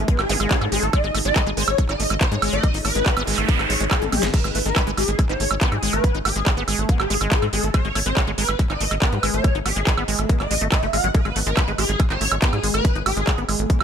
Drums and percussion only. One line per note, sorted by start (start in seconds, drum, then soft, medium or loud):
0.08 kick loud
0.08 closed hi-hat medium
0.19 clap soft
0.19 closed hi-hat soft
0.19 high woodblock medium
0.29 open hi-hat loud
0.40 closed hi-hat medium
0.40 high woodblock soft
0.51 kick loud
0.51 clap loud
0.51 closed hi-hat medium
0.61 closed hi-hat soft
0.61 high woodblock soft
0.72 open hi-hat loud
0.83 closed hi-hat medium
0.93 kick loud
0.93 closed hi-hat medium
0.93 high woodblock medium
1.04 closed hi-hat soft
1.15 open hi-hat medium
1.15 high woodblock soft
1.25 closed hi-hat medium
1.36 kick loud
1.36 clap loud
1.36 closed hi-hat medium
1.36 high woodblock soft
1.46 closed hi-hat soft
1.57 open hi-hat loud
1.68 high woodblock medium
1.78 kick loud
1.78 closed hi-hat medium
1.89 clap soft
1.89 closed hi-hat soft
1.89 high woodblock soft
2.00 open hi-hat loud
2.10 closed hi-hat medium
2.10 high woodblock soft
2.21 kick loud
2.21 clap loud
2.21 closed hi-hat medium
2.32 closed hi-hat soft
2.42 open hi-hat loud
2.42 high woodblock medium
2.53 closed hi-hat medium
2.63 kick loud
2.63 closed hi-hat medium
2.63 high woodblock soft
2.74 open hi-hat medium
2.85 open hi-hat loud
2.85 high woodblock soft
2.95 closed hi-hat medium
3.06 kick loud
3.06 clap loud
3.06 closed hi-hat medium
3.17 closed hi-hat soft
3.17 high woodblock medium
3.27 open hi-hat loud
3.38 closed hi-hat medium
3.38 high woodblock soft
3.49 kick loud
3.49 closed hi-hat medium
3.59 clap soft
3.59 closed hi-hat soft
3.59 high woodblock soft
3.70 open hi-hat loud
3.80 closed hi-hat medium
3.91 kick loud
3.91 clap loud
3.91 closed hi-hat medium
3.91 high woodblock medium
4.02 closed hi-hat soft
4.02 high tom medium
4.12 open hi-hat loud
4.12 mid tom medium
4.12 high woodblock soft
4.23 snare medium
4.34 kick loud
4.34 closed hi-hat medium
4.34 crash medium
4.44 closed hi-hat soft
4.44 high woodblock soft
4.55 open hi-hat loud
4.66 closed hi-hat medium
4.76 kick loud
4.76 clap loud
4.76 closed hi-hat medium
4.76 high woodblock medium
4.87 closed hi-hat soft
4.97 open hi-hat loud
4.97 high woodblock soft
5.08 closed hi-hat medium
5.19 kick loud
5.19 closed hi-hat medium
5.19 high woodblock soft
5.29 clap soft
5.29 closed hi-hat soft
5.40 open hi-hat loud
5.51 closed hi-hat medium
5.51 high woodblock medium
5.61 kick loud
5.61 clap loud
5.61 closed hi-hat medium
5.72 closed hi-hat soft
5.72 high woodblock soft
5.83 open hi-hat loud
5.93 closed hi-hat medium
5.93 high woodblock soft
6.04 kick loud
6.04 closed hi-hat medium
6.15 closed hi-hat soft
6.25 open hi-hat loud
6.25 high woodblock medium
6.36 closed hi-hat medium
6.46 kick loud
6.46 clap loud
6.46 closed hi-hat medium
6.46 high woodblock soft
6.57 closed hi-hat soft
6.68 open hi-hat loud
6.68 high woodblock soft
6.78 closed hi-hat medium
6.89 kick loud
6.89 closed hi-hat medium
7.00 clap soft
7.00 closed hi-hat soft
7.00 high woodblock medium
7.10 open hi-hat loud
7.21 closed hi-hat medium
7.21 high woodblock soft
7.32 kick loud
7.32 clap loud
7.32 closed hi-hat medium
7.42 closed hi-hat soft
7.42 high woodblock soft
7.53 open hi-hat loud
7.63 closed hi-hat medium
7.74 kick loud
7.74 closed hi-hat medium
7.74 high woodblock medium
7.85 closed hi-hat soft
7.95 open hi-hat loud
7.95 high woodblock soft
8.06 closed hi-hat medium
8.17 kick loud
8.17 clap loud
8.17 closed hi-hat soft
8.17 high woodblock soft
8.27 closed hi-hat soft
8.38 open hi-hat loud
8.49 high woodblock medium
8.59 kick loud
8.59 closed hi-hat soft
8.70 clap soft
8.70 closed hi-hat soft
8.70 high woodblock soft
8.80 open hi-hat loud
8.91 closed hi-hat medium
8.91 high woodblock soft
9.02 kick loud
9.02 clap loud
9.02 closed hi-hat medium
9.12 closed hi-hat soft
9.23 open hi-hat loud
9.23 high woodblock medium
9.34 closed hi-hat medium
9.44 kick loud
9.44 closed hi-hat soft
9.44 high woodblock soft
9.55 closed hi-hat soft
9.66 open hi-hat loud
9.66 high woodblock soft
9.76 closed hi-hat medium
9.87 kick loud
9.87 clap loud
9.87 closed hi-hat medium
9.98 closed hi-hat soft
9.98 high woodblock medium
10.08 open hi-hat loud
10.19 closed hi-hat medium
10.19 high woodblock soft
10.29 kick loud
10.29 closed hi-hat medium
10.40 clap soft
10.40 closed hi-hat soft
10.40 high woodblock soft
10.51 open hi-hat loud
10.61 closed hi-hat medium
10.72 kick loud
10.72 clap loud
10.72 closed hi-hat soft
10.72 high woodblock medium
10.83 closed hi-hat soft
10.93 open hi-hat loud
10.93 high woodblock soft
11.04 closed hi-hat medium
11.15 kick loud
11.15 closed hi-hat medium
11.25 closed hi-hat soft
11.25 high woodblock soft
11.36 open hi-hat loud
11.46 closed hi-hat medium
11.57 kick loud
11.57 clap loud
11.57 closed hi-hat soft
11.57 high woodblock medium
11.68 closed hi-hat soft
11.78 open hi-hat loud
11.78 high woodblock soft
11.89 closed hi-hat soft
12.00 kick loud
12.00 closed hi-hat soft
12.00 high woodblock soft
12.10 clap soft
12.10 closed hi-hat soft
12.21 open hi-hat loud
12.32 closed hi-hat medium
12.32 high woodblock medium
12.42 kick loud
12.42 clap loud
12.42 closed hi-hat medium
12.53 closed hi-hat soft
12.53 high woodblock soft
12.63 open hi-hat loud
12.74 closed hi-hat medium
12.74 high woodblock soft
12.85 kick loud
12.85 closed hi-hat medium
12.95 closed hi-hat soft
13.06 open hi-hat loud
13.06 high woodblock medium
13.17 closed hi-hat medium
13.27 kick loud
13.27 clap loud
13.27 closed hi-hat medium
13.27 high woodblock soft
13.38 closed hi-hat soft
13.49 open hi-hat loud
13.49 high woodblock soft
13.59 closed hi-hat medium
13.70 kick loud
13.70 closed hi-hat medium
13.81 clap soft
13.81 closed hi-hat soft
13.81 high woodblock medium